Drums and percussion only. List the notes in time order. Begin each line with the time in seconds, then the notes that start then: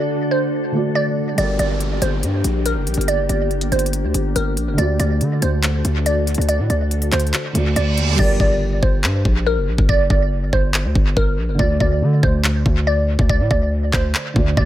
1.38 closed hi-hat
1.59 closed hi-hat
1.80 closed hi-hat
2.02 closed hi-hat
2.23 closed hi-hat
2.44 closed hi-hat
2.66 closed hi-hat
2.87 closed hi-hat
2.94 closed hi-hat
3.01 closed hi-hat
3.08 closed hi-hat
3.29 closed hi-hat
3.51 closed hi-hat
3.61 closed hi-hat
3.72 closed hi-hat
3.79 closed hi-hat
3.86 closed hi-hat
3.93 closed hi-hat
4.14 closed hi-hat
4.36 closed hi-hat
4.57 closed hi-hat
4.78 closed hi-hat
5.00 closed hi-hat
5.21 closed hi-hat
5.42 closed hi-hat
5.63 clap, closed hi-hat
5.85 closed hi-hat
6.06 closed hi-hat
6.27 closed hi-hat
6.34 closed hi-hat
6.42 closed hi-hat
6.49 closed hi-hat
6.70 closed hi-hat
6.91 closed hi-hat
7.02 closed hi-hat
7.12 clap, closed hi-hat
7.20 closed hi-hat
7.27 closed hi-hat
7.34 clap, closed hi-hat
7.55 closed hi-hat
7.76 closed hi-hat
7.97 closed hi-hat
8.19 kick, crash
8.40 kick
8.83 kick
9.04 clap
9.25 kick
9.78 kick
9.89 kick
10.10 kick
10.53 kick
10.74 clap
10.95 kick
11.17 kick
11.59 kick
11.80 kick
12.23 kick
12.44 clap
12.66 kick
13.19 kick
13.29 kick
13.51 kick
13.93 kick, clap
14.15 clap
14.36 kick
14.57 kick